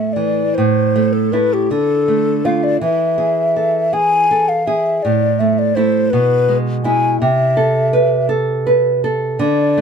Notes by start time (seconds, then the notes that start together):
Already playing: A2 A3 E5
0.13 E3 D5
0.55 A2 C5
0.96 A3
1.13 A4
1.32 A3 E4 B4
1.53 G4
1.71 D3 A4
2.08 A3
2.45 A3 F4 F5
2.64 D5
2.81 E3 E5
3.18 G#4
3.56 A4
3.93 G#4 G#5
4.31 A4
4.49 F5
4.67 G#4 E5
5.03 A2 D5
5.39 A3 E5
5.59 D5
5.76 A3 E4 C5
6.10 B2 B4
6.49 G#3
6.84 G#3 E4 G#5
7.21 C3 E5
7.57 A4
7.93 B4
8.29 A4
8.67 B4
9.04 A4
9.39 D3 D5
9.78 A3